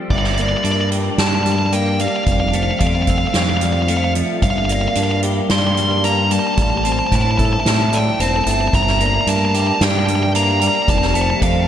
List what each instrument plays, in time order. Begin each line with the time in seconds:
Already playing: clean electric guitar F3 G3 C4 F4
0.10 fingered electric bass G1, clean electric guitar G2, lead electric guitar D5, vibraphone E5, kick, crash
0.18 lead electric guitar D5
0.24 lead electric guitar D5, snare
0.34 clean electric guitar A#3, lead electric guitar D5, vibraphone D5, closed hi-hat
0.41 lead electric guitar D5
0.49 lead electric guitar D5
0.57 lead electric guitar D5
0.64 fingered electric bass G2, clean electric guitar D4, vibraphone A#4, lead electric guitar D5, closed hi-hat
0.72 lead electric guitar D5
0.81 lead electric guitar D5
0.91 clean electric guitar G4, closed hi-hat
1.18 fingered electric bass G2, clean electric guitar D4, vibraphone D5, lead electric guitar A5, snare, closed hi-hat
1.28 lead electric guitar A5
1.35 lead electric guitar A5
1.43 clean electric guitar G3, lead electric guitar A5, closed hi-hat
1.52 lead electric guitar A5
1.59 lead electric guitar A5
1.66 lead electric guitar A5
1.72 clean electric guitar A#3, vibraphone F5, lead electric guitar G5, closed hi-hat
1.99 clean electric guitar G3, vibraphone D5, lead electric guitar F5, closed hi-hat
2.08 lead electric guitar F5
2.16 lead electric guitar F5
2.24 fingered electric bass F1, clean electric guitar F2, lead electric guitar F5, kick, closed hi-hat
2.32 lead electric guitar F5
2.40 lead electric guitar F5
2.48 lead electric guitar F5
2.53 clean electric guitar A3, vibraphone C5, lead electric guitar F5, closed hi-hat
2.63 lead electric guitar F5
2.71 lead electric guitar F5
2.79 fingered electric bass F2, clean electric guitar C4, lead electric guitar F5, kick, closed hi-hat
2.87 lead electric guitar F5
2.95 lead electric guitar F5
3.02 lead electric guitar F5
3.07 lead electric guitar F5, vibraphone E6, kick, closed hi-hat
3.18 lead electric guitar F5
3.27 lead electric guitar F5
3.34 fingered electric bass F2, clean electric guitar C4, lead electric guitar F5, snare, closed hi-hat
3.42 lead electric guitar F5
3.50 lead electric guitar F5
3.57 lead electric guitar F5
3.61 clean electric guitar F3, vibraphone D5, closed hi-hat
3.66 lead electric guitar F5
3.72 lead electric guitar F5
3.82 lead electric guitar F5
3.88 clean electric guitar A3, vibraphone C5, lead electric guitar F5, closed hi-hat
3.97 lead electric guitar F5
4.04 lead electric guitar F5
4.15 clean electric guitar F3, vibraphone E5, closed hi-hat
4.42 fingered electric bass G1, clean electric guitar G2, vibraphone E5, lead electric guitar F5, kick, closed hi-hat
4.50 lead electric guitar F5
4.58 lead electric guitar F5
4.65 clean electric guitar A#3, vibraphone D5, lead electric guitar F5, closed hi-hat
4.73 lead electric guitar F5
4.81 lead electric guitar F5
4.88 lead electric guitar F5
4.95 fingered electric bass G2, clean electric guitar D4, vibraphone A#4, lead electric guitar F5, closed hi-hat
5.04 lead electric guitar F5
5.11 lead electric guitar F5
5.23 clean electric guitar G4, closed hi-hat
5.50 fingered electric bass G2, clean electric guitar D4, vibraphone D5, lead electric guitar C6, snare, closed hi-hat
5.59 lead electric guitar C6
5.67 lead electric guitar C6
5.75 clean electric guitar G3, lead electric guitar C6, closed hi-hat
5.83 lead electric guitar C6
5.91 lead electric guitar C6
5.98 lead electric guitar C6
6.04 clean electric guitar A#3, vibraphone F5, lead electric guitar A#5, closed hi-hat
6.31 clean electric guitar G3, vibraphone D5, lead electric guitar A5, closed hi-hat
6.39 lead electric guitar A5
6.47 lead electric guitar A5
6.54 fingered electric bass A1, clean electric guitar A2, lead electric guitar A5, kick, closed hi-hat
6.62 lead electric guitar A5
6.70 lead electric guitar A5
6.77 lead electric guitar A5
6.84 clean electric guitar C4, vibraphone C5, lead electric guitar A5, closed hi-hat
6.92 lead electric guitar A5
6.99 lead electric guitar A5
7.07 lead electric guitar A5
7.12 fingered electric bass A2, clean electric guitar E4, lead electric guitar A5, kick, closed hi-hat
7.21 lead electric guitar A5
7.31 lead electric guitar A5
7.38 clean electric guitar A4, vibraphone E5, lead electric guitar A5, kick, closed hi-hat
7.45 lead electric guitar A5
7.53 lead electric guitar A5
7.60 lead electric guitar A5
7.65 fingered electric bass A2, clean electric guitar E4, lead electric guitar A5, snare, closed hi-hat
7.75 lead electric guitar A5
7.82 lead electric guitar A5
7.90 clean electric guitar A3, vibraphone D5, lead electric guitar G5 A5, closed hi-hat
8.20 fingered electric bass E1, clean electric guitar C4, vibraphone C5, lead electric guitar A5, closed hi-hat
8.28 lead electric guitar A5
8.36 lead electric guitar A5
8.44 fingered electric bass G1, clean electric guitar A3, vibraphone E5, lead electric guitar A5, closed hi-hat
8.51 lead electric guitar A5
8.61 lead electric guitar A5
8.68 lead electric guitar A5
8.73 fingered electric bass G1, clean electric guitar G2, vibraphone E5, lead electric guitar A#5, kick, closed hi-hat
8.82 lead electric guitar A#5
8.87 snare
8.91 lead electric guitar A#5
8.99 clean electric guitar A#3, vibraphone D5, lead electric guitar A#5, closed hi-hat
9.06 lead electric guitar A#5
9.14 lead electric guitar A#5
9.21 lead electric guitar A#5
9.27 fingered electric bass G2, clean electric guitar D4, vibraphone A#4, lead electric guitar A5, closed hi-hat
9.36 lead electric guitar A5
9.45 lead electric guitar A5
9.51 clean electric guitar G4, lead electric guitar A5, closed hi-hat
9.60 lead electric guitar A5
9.67 lead electric guitar A5
9.75 lead electric guitar A5
9.81 fingered electric bass G2, clean electric guitar D4, vibraphone D5, lead electric guitar G5, snare, closed hi-hat
9.91 lead electric guitar G5
9.99 lead electric guitar G5
10.06 clean electric guitar G3, lead electric guitar G5, closed hi-hat
10.15 lead electric guitar G5
10.23 lead electric guitar G5
10.35 clean electric guitar A#3, vibraphone F5, lead electric guitar A#5, closed hi-hat
10.43 lead electric guitar A#5
10.51 lead electric guitar A#5
10.60 clean electric guitar G3, vibraphone D5, lead electric guitar A#5, closed hi-hat
10.68 lead electric guitar A#5
10.75 lead electric guitar A#5
10.82 lead electric guitar A#5
10.88 fingered electric bass F1, clean electric guitar F2, lead electric guitar A5, kick, closed hi-hat
10.98 lead electric guitar A5, snare
11.06 lead electric guitar A5
11.14 clean electric guitar A3, vibraphone C5, lead electric guitar A5, closed hi-hat
11.21 lead electric guitar A5
11.30 lead electric guitar A5
11.42 fingered electric bass F2, clean electric guitar C4, lead electric guitar F5, kick, closed hi-hat